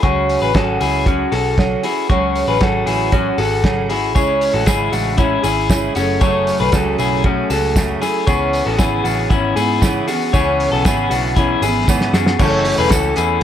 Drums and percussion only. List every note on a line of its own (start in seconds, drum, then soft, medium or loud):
0.03 kick loud
0.03 closed hi-hat medium
0.29 open hi-hat medium
0.55 kick loud
0.55 snare loud
0.55 closed hi-hat medium
0.81 open hi-hat medium
1.06 kick medium
1.06 closed hi-hat medium
1.32 open hi-hat medium
1.58 kick loud
1.58 snare loud
1.58 closed hi-hat medium
1.83 open hi-hat medium
2.10 kick loud
2.10 closed hi-hat medium
2.35 open hi-hat medium
2.61 kick loud
2.61 snare loud
2.61 closed hi-hat medium
2.87 open hi-hat medium
3.12 kick loud
3.12 closed hi-hat medium
3.38 open hi-hat medium
3.64 kick loud
3.64 snare loud
3.64 closed hi-hat medium
3.90 open hi-hat medium
4.16 kick loud
4.16 closed hi-hat medium
4.16 tambourine soft
4.41 open hi-hat medium
4.41 tambourine soft
4.66 kick loud
4.66 snare loud
4.66 closed hi-hat medium
4.66 tambourine medium
4.93 open hi-hat medium
4.93 tambourine medium
5.18 kick loud
5.18 closed hi-hat medium
5.18 tambourine soft
5.44 open hi-hat medium
5.44 tambourine medium
5.70 kick loud
5.70 snare loud
5.70 closed hi-hat medium
5.70 tambourine medium
5.95 open hi-hat medium
5.95 tambourine medium
6.21 kick loud
6.21 closed hi-hat medium
6.21 tambourine soft
6.47 open hi-hat medium
6.47 tambourine soft
6.72 kick loud
6.72 snare loud
6.72 closed hi-hat medium
6.72 tambourine medium
6.99 open hi-hat medium
6.99 tambourine medium
7.24 kick loud
7.24 closed hi-hat medium
7.50 open hi-hat medium
7.50 tambourine medium
7.76 kick loud
7.76 snare loud
7.76 closed hi-hat medium
7.76 tambourine medium
8.02 open hi-hat medium
8.02 tambourine medium
8.27 kick loud
8.27 closed hi-hat medium
8.27 tambourine soft
8.53 open hi-hat medium
8.53 tambourine soft
8.79 kick loud
8.79 snare loud
8.79 closed hi-hat medium
8.79 tambourine loud
9.05 open hi-hat medium
9.05 tambourine medium
9.30 kick loud
9.30 closed hi-hat medium
9.30 tambourine soft
9.56 open hi-hat medium
9.56 tambourine medium
9.82 kick loud
9.82 snare loud
9.82 closed hi-hat medium
9.82 tambourine medium
10.08 open hi-hat medium
10.08 tambourine soft
10.34 kick loud
10.34 closed hi-hat medium
10.34 tambourine soft
10.60 open hi-hat medium
10.85 kick loud
10.85 snare loud
10.85 closed hi-hat medium
10.85 tambourine medium
11.11 open hi-hat medium
11.11 tambourine medium
11.36 kick loud
11.36 closed hi-hat medium
11.36 tambourine soft
11.62 open hi-hat medium
11.62 tambourine medium
11.88 kick loud
11.88 snare medium
11.88 tambourine medium
12.01 snare medium
12.14 snare medium
12.14 tambourine soft
12.26 snare medium
12.39 kick loud
12.39 crash loud
12.39 tambourine medium
12.65 hi-hat pedal medium
12.65 open hi-hat medium
12.90 kick loud
12.90 snare loud
12.90 hi-hat pedal medium
12.90 open hi-hat medium
12.90 tambourine medium
13.16 hi-hat pedal medium
13.16 open hi-hat medium
13.16 tambourine medium